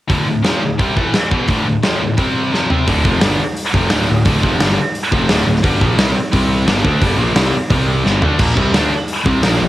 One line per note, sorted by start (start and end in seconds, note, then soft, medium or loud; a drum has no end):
0.08 0.25 D2 medium
0.08 0.26 A2 medium
0.08 0.27 D3 medium
0.08 kick medium
0.08 open hi-hat soft
0.26 0.41 D2 medium
0.26 0.41 A2 medium
0.43 0.61 F2 medium
0.43 0.61 C3 medium
0.43 0.62 F3 medium
0.43 snare loud
0.43 open hi-hat soft
0.63 0.76 D2 medium
0.63 0.76 A2 medium
0.78 0.95 C3 medium
0.78 0.96 G3 medium
0.78 0.96 C4 medium
0.78 kick loud
0.78 open hi-hat soft
0.96 1.13 A2 medium
0.96 1.14 E3 medium
0.96 1.14 A3 medium
0.96 kick medium
1.14 snare medium
1.14 open hi-hat soft
1.31 1.48 E2 medium
1.31 1.48 B2 loud
1.31 1.49 E3 medium
1.31 kick medium
1.48 1.65 D2 medium
1.48 1.65 A2 medium
1.48 1.67 D3 medium
1.48 kick medium
1.48 open hi-hat soft
1.66 1.80 D2 medium
1.66 1.80 A2 medium
1.82 2.00 F2 medium
1.82 2.00 C3 medium
1.82 2.01 F3 medium
1.82 snare loud
1.82 open hi-hat soft
2.00 2.14 D2 medium
2.00 2.14 A2 medium
2.17 2.51 C3 medium
2.17 2.52 G3 medium
2.17 2.53 C4 medium
2.17 kick medium
2.17 open hi-hat soft
2.52 2.69 F2 medium
2.52 2.68 C3 medium
2.52 2.69 F3 medium
2.52 snare soft
2.69 2.86 C3 medium
2.69 2.87 G3 medium
2.69 2.87 C4 medium
2.69 floor tom medium
2.86 3.04 D1 loud
2.86 3.03 D2 medium
2.86 3.03 A2 loud
2.86 3.04 D3 loud
2.86 kick loud
2.86 open hi-hat medium
3.04 3.21 F1 medium
3.04 3.21 F2 medium
3.04 3.21 C3 medium
3.04 3.22 F3 loud
3.04 kick loud
3.21 3.38 G1 loud
3.21 3.39 G2 medium
3.21 3.39 D3 medium
3.21 3.40 G3 loud
3.21 snare loud
3.21 open hi-hat medium
3.56 open hi-hat medium
3.73 3.90 F1 medium
3.73 3.89 F2 medium
3.73 3.90 C3 medium
3.73 3.90 F3 loud
3.73 kick loud
3.90 4.07 D1 medium
3.90 4.06 D2 medium
3.90 4.07 A2 loud
3.90 4.08 D3 loud
3.90 snare loud
3.90 open hi-hat medium
4.00 snare soft
4.08 4.25 D1 medium
4.08 4.22 D2 medium
4.08 4.22 A2 medium
4.25 4.42 D1 medium
4.25 4.40 D2 loud
4.25 4.42 A2 loud
4.25 4.42 D3 loud
4.25 kick loud
4.25 open hi-hat medium
4.41 4.59 F1 medium
4.41 4.58 F2 loud
4.41 4.58 C3 loud
4.41 4.59 F3 loud
4.41 kick loud
4.59 4.77 G1 loud
4.59 4.76 G2 loud
4.59 4.76 D3 loud
4.59 4.77 G3 loud
4.59 snare loud
4.59 open hi-hat medium
4.95 open hi-hat medium
5.11 5.28 F1 medium
5.11 5.28 F2 loud
5.11 5.29 C3 medium
5.11 5.29 F3 loud
5.11 kick loud
5.29 5.46 D1 medium
5.29 5.45 D2 medium
5.29 5.46 A2 loud
5.29 5.46 D3 loud
5.29 snare loud
5.29 open hi-hat medium
5.46 5.63 D1 medium
5.46 5.60 D2 medium
5.46 5.60 A2 medium
5.56 snare soft
5.63 5.80 G1 loud
5.63 5.80 G2 loud
5.63 5.80 D3 loud
5.63 5.80 G3 medium
5.63 kick loud
5.63 open hi-hat medium
5.81 5.96 A#1 medium
5.81 5.97 A#2 loud
5.81 5.98 F3 loud
5.81 5.98 A#3 loud
5.81 kick loud
5.97 6.14 C2 medium
5.97 6.15 C3 loud
5.97 6.15 G3 loud
5.97 6.15 C4 loud
5.97 snare loud
5.97 open hi-hat medium
6.32 6.65 C2 medium
6.32 6.67 C3 medium
6.32 6.67 G3 loud
6.32 6.67 C4 loud
6.32 kick loud
6.32 open hi-hat medium
6.66 6.83 G1 medium
6.66 6.84 G2 medium
6.66 6.82 D3 medium
6.66 6.83 G3 loud
6.66 snare loud
6.66 open hi-hat medium
6.77 snare soft
6.83 7.00 D2 loud
6.83 7.00 D3 medium
6.83 7.01 A3 loud
6.83 7.01 D4 loud
6.83 kick loud
7.01 7.17 G1 medium
7.01 7.17 G2 medium
7.01 7.18 D3 medium
7.01 7.18 G3 loud
7.01 kick loud
7.01 open hi-hat medium
7.17 7.34 A#1 loud
7.17 7.35 A#2 loud
7.17 7.35 F3 loud
7.17 7.36 A#3 loud
7.35 7.52 C2 medium
7.35 7.53 C3 loud
7.35 7.53 G3 loud
7.35 7.53 C4 loud
7.35 snare loud
7.35 open hi-hat medium
7.70 8.03 C2 medium
7.70 8.04 C3 medium
7.70 8.04 G3 loud
7.70 8.05 C4 loud
7.70 kick loud
7.70 open hi-hat medium
8.04 8.21 G1 medium
8.04 8.22 G2 medium
8.04 8.20 D3 loud
8.04 8.22 G3 loud
8.04 snare medium
8.21 8.38 D2 medium
8.21 8.38 D3 loud
8.21 8.39 A3 loud
8.21 8.39 D4 medium
8.21 floor tom medium
8.38 8.56 A#1 medium
8.38 8.55 A#2 medium
8.38 8.55 F3 medium
8.38 8.56 A#3 loud
8.38 kick loud
8.38 splash medium
8.38 crash loud
8.55 8.73 C2 medium
8.55 8.73 C3 medium
8.55 8.72 G3 loud
8.55 8.72 C4 loud
8.55 kick loud
8.72 8.90 D2 medium
8.72 8.90 D3 medium
8.72 8.90 A3 medium
8.72 8.91 D4 loud
8.72 snare loud
8.72 open hi-hat medium
9.08 open hi-hat medium
9.24 9.42 C2 medium
9.24 9.42 C3 medium
9.24 9.42 G3 medium
9.24 9.43 C4 loud
9.24 kick loud
9.42 9.60 A#1 medium
9.42 9.59 A#2 loud
9.42 9.59 F3 medium
9.42 9.61 A#3 loud
9.42 snare loud
9.42 open hi-hat medium
9.53 snare soft
9.60 9.68 A#1 medium
9.60 9.68 A#2 medium
9.60 9.68 F3 medium